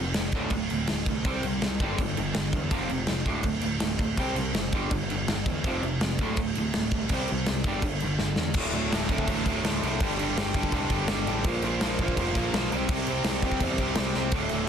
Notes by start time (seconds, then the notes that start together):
Already playing: F1
0.00 F2 C3
0.14 F1 F2 C3, snare, crash
0.32 D1 D2 A2 D3, kick, crash
0.50 D1 D2 A2, kick, crash
0.70 D1 D2 A2, crash
0.87 D1 D2 A2, snare, crash
1.06 C2 D2 A2, kick, crash
1.25 C2 C3 G3 C4, kick, crash
1.43 C2 C3 G3, crash
1.62 C2 C3 G3, snare, crash
1.80 G1 G2 D3 G3, kick, crash
1.98 G1 G2 D3, kick, crash
2.17 G1 G2 D3, crash
2.34 G1 G2 D3, snare, crash
2.53 E2 G2 D3, kick, crash
2.71 F1 F2 C3 F3, kick, crash
2.89 F1 F2 C3, crash
3.07 F1 F2 C3, snare, crash
3.26 D1 D2 A2 D3, kick, crash
3.43 D1 D2 A2, kick, crash
3.61 D1 D2 A2, crash
3.80 D1 D2 A2, snare, crash
3.99 D1 D2 A2, kick, crash
4.17 C2 C3 G3 C4, kick, crash
4.34 C2 C3 G3, crash
4.52 F#1 C3 G3, snare, crash
4.73 G1 G2 D3 G3, kick, crash
4.91 G1 G2 D3, kick, crash
5.08 G1 G2 D3, crash
5.27 G1 G2 D3, snare, crash
5.46 E2 G2 D3, kick, crash
5.64 F1 F2 C3 F3, kick, crash
5.82 F1 F2 C3, crash
6.00 F1 F2 C3, snare, crash
6.19 D1 D2 A2 D3, kick, crash
6.37 D1 D2 A2, kick, crash
6.55 D1 D2 A2, crash
6.74 D1 D2 A2, snare, crash
6.91 C2 D2 A2, kick, crash
7.09 C2 C3 G3 C4, kick, crash
7.28 C3 G3, crash
7.32 C2
7.46 C2 C3 G3, snare, crash
7.64 G1 G2 D3 G3, kick, crash
7.82 G1 G2 D3, kick, crash
8.00 G1 G2 D3, crash
8.19 G1 G2 D3, snare
8.36 E2 G2 D3, snare
8.54 D1 D2 A2 D3, kick, crash
8.73 D1 D2 A2 D3, crash
8.92 D1 D2 A2 D3, snare, crash
9.09 D1 D2 A2 D3, kick, crash
9.18 kick
9.28 A1 D2 A2 D3, kick, crash
9.46 D1 D2 A2 D3, kick, crash
9.64 D1 D2 A2 D3, snare, crash
9.82 C2 D2 A2 D3, crash
10.01 G1 G2 D3 G3, kick, crash
10.19 G2 D3 G3, crash
10.37 G1 G2 D3 G3, snare, crash
10.54 G1 G2 D3 G3, kick, crash
10.63 kick
10.72 C2 G2 D3 G3, kick, crash
10.90 G1 G2 D3 G3, kick, crash
11.08 G1 G2 D3 G3, snare, crash
11.27 A1 G2 D3 G3, crash
11.44 A#1 A#2 F3 A#3, kick, crash
11.62 A#1 A#2 F3 A#3, crash
11.81 A#1 A#2 F3 A#3, snare, crash
11.99 A#1 A#2 F3 A#3, kick, crash
12.08 kick
12.17 F1 A#2 F3 A#3, kick, crash
12.35 A#1 A#2 F3 A#3, kick, crash
12.53 B1 A#2 F3 A#3, snare, crash
12.72 C2 C3 G3 C4, crash
12.88 C2 C3 G3 C4, kick, crash
13.06 C3 G3 C4, crash
13.24 C2 C3 G3 C4, snare, crash
13.42 C2 C3 G3 C4, kick, crash
13.52 kick
13.60 E2 C3 G3 C4, kick, crash
13.78 C2 C3 G3 C4, kick, crash
13.95 C2 C3 G3 C4, snare, crash
14.14 C2 C3 G3 C4, snare
14.32 D1 D2 A2 D3, kick, crash
14.49 D1 D2 A2 D3, crash